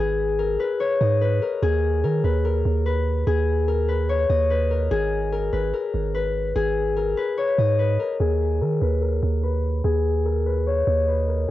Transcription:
Already playing: harp G#4 B4
0.00 808-style bass G#1
0.39 harp A#4
0.60 harp B4
0.80 harp C#5
1.01 808-style bass G#2, harp D#5
1.21 harp B4
1.42 harp A#4
1.63 808-style bass D#2, harp G#4
2.04 808-style bass D#3, harp A#4
2.24 808-style bass D#2, harp B4
2.45 harp A#4
2.65 808-style bass D#2
2.86 harp B4
3.27 808-style bass D#2, harp G#4
3.68 harp A#4
3.88 harp B4
4.09 harp C#5
4.30 808-style bass D#2, harp D#5
4.50 harp B4
4.71 harp A#4
4.91 808-style bass G#1, harp G#4
5.32 harp A#4
5.53 808-style bass G#1, harp B4
5.73 harp A#4
5.94 808-style bass G#1
6.14 harp B4
6.56 808-style bass G#1, harp G#4
6.97 harp A#4
7.17 harp B4
7.38 harp C#5
7.58 808-style bass G#2, harp D#5
7.79 harp B4
7.99 harp A#4
8.20 808-style bass D#2, harp G#4
8.61 808-style bass D#3, harp A#4
8.82 808-style bass D#2, harp B4
9.02 harp A#4
9.23 808-style bass D#2
9.43 harp B4
9.84 808-style bass D#2, harp G#4
10.25 harp A#4
10.46 harp B4
10.67 harp C#5
10.87 808-style bass D#2, harp D#5
11.08 harp B4
11.28 harp A#4

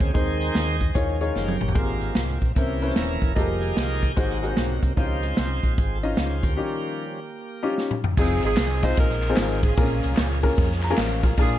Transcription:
Already playing: tonewheel organ C#3 G#3 A#3 C4 C#4 G#4 C5
0.00 fingered electric bass D2, kick, closed hi-hat
0.13 fingered electric bass D#2, tonewheel organ D#3 G#3 C4 D#4 G#4 C5, grand piano D#3 C4 D#4 G#4 C5, kick, closed hi-hat
0.39 tonewheel organ G#4 C5 D#5, closed hi-hat
0.55 fingered electric bass D#2, snare, closed hi-hat
0.81 kick, closed hi-hat
0.94 fingered electric bass D#2, grand piano D#3 D#4 F4 G#4 C#5, tonewheel organ F3 G#3 C#4, kick, closed hi-hat
1.21 grand piano D#4 F4 G#4 C#5, tonewheel organ F4, closed hi-hat
1.35 fingered electric bass F#1, tonewheel organ A#3 C#4 G4, snare
1.48 high tom
1.61 fingered electric bass G1, mid tom
1.68 floor tom
1.75 fingered electric bass G#1, grand piano G#2 C4 G4 G#4 A#4, tonewheel organ G#3 A#3 C4 F4, kick, closed hi-hat
2.01 closed hi-hat
2.15 fingered electric bass C2, snare, closed hi-hat
2.41 fingered electric bass A#1, kick, closed hi-hat
2.55 fingered electric bass C2, grand piano C3 C#4 E4 A#4 C5, tonewheel organ E3 A#3 C#4 E4 G4, kick, closed hi-hat
2.82 grand piano C#4 E4 A#4 B4, closed hi-hat
2.87 grand piano C5
2.91 tonewheel organ A4
2.96 fingered electric bass D#1, tonewheel organ C#4 E4 A#4, snare, closed hi-hat
3.22 fingered electric bass E1, kick, closed hi-hat
3.35 fingered electric bass F1, tonewheel organ D#3 F3 G#3 A#3 D#4 A#4 C5, grand piano D#4 G4 G#4 A4, kick, closed hi-hat
3.41 grand piano A#4
3.61 tonewheel organ G4 G#4 D#5, closed hi-hat
3.77 fingered electric bass C2, snare, closed hi-hat
4.03 kick, closed hi-hat
4.16 fingered electric bass G#1, grand piano G#2 D#4 F#4 G#4 C5, tonewheel organ C3 F#3 A#3, kick, closed hi-hat
4.30 snare
4.42 tonewheel organ C4 D#4 F#4, grand piano D#4 F#4 G#4 A#4, closed hi-hat
4.48 grand piano C5
4.57 fingered electric bass B1, snare, closed hi-hat
4.83 fingered electric bass C2, kick, closed hi-hat
4.96 fingered electric bass C#2, grand piano C#3 C#4 D#4 F4 C5, tonewheel organ D#3 F3 C4 D#4 G4 C5, kick, closed hi-hat
5.22 tonewheel organ G#3 C4 F4, closed hi-hat
5.37 fingered electric bass C2, snare, closed hi-hat
5.63 fingered electric bass A#1, tonewheel organ F4, kick, closed hi-hat
5.78 fingered electric bass G#1, tonewheel organ F4 G#4 C5, kick, closed hi-hat
5.95 tonewheel organ A4
6.03 grand piano C#4 D#4 F4 D#5, tonewheel organ A#4, closed hi-hat
6.17 fingered electric bass C#2, tonewheel organ G#4, snare, closed hi-hat
6.43 fingered electric bass D2, tonewheel organ A#3 C#4 G4, kick, closed hi-hat
6.57 grand piano D#3 C#4 D#4 F4 G4, tonewheel organ F3 G3 C#4
7.63 tonewheel organ F3 G3 C#4, grand piano C#4 D#4 F4 G4
7.78 snare
7.91 mid tom
8.04 floor tom
8.17 fingered electric bass F1, tonewheel organ F3 G#3 C4 D#4 G#4, saxophone section C4 D#4 G#4, grand piano C4 D#4 F4 G#4 C5, kick, crash, tambourine
8.42 fingered electric bass G#1, saxophone section C4 D#4 G#4, ride, tambourine
8.57 fingered electric bass C2, snare, clap, ride, tambourine
8.82 grand piano C4 D#4 F4 G#4 D#5, saxophone section C5, kick, snare, ride, tambourine
8.96 fingered electric bass A#1, saxophone section D#4, kick, ride, tambourine
9.00 saxophone section A#4
9.10 snare
9.22 clap, ride, tambourine
9.29 grand piano C4 D#4 F4 G#4 C5
9.36 fingered electric bass G#1, snare, clap, ride, tambourine
9.63 saxophone section C#4 F4 G#4, kick, ride, tambourine
9.77 fingered electric bass A#1, grand piano A#2 A#3 C4 F4 G#4 A#4, tonewheel organ F3 G#3 A#3 C#4 G#4, kick, ride, tambourine
9.82 grand piano C#4
10.03 fingered electric bass C2, ride, tambourine
10.17 fingered electric bass C#2, snare, clap, ride, tambourine
10.42 grand piano A#3 C#4 F4 G#4 A#4, kick, ride, tambourine
10.57 fingered electric bass F2, kick, ride, tambourine
10.71 snare
10.82 tonewheel organ G#4 C5, grand piano A#5, clap, ride, tambourine
10.90 grand piano A#3 C#4 F4 G#4 A#4
10.97 fingered electric bass A1, tonewheel organ G4 A#4, grand piano C5 F5, snare, clap, ride, tambourine
11.23 grand piano F4 A#4, tonewheel organ F4 G#4, kick, ride, tambourine
11.37 fingered electric bass A#1, grand piano A#2 A#3 D4 F4 G#4 A#4, tonewheel organ F3 G#3 A#3 D4 G#4, saxophone section D4 F4 G#4, kick, ride, tambourine

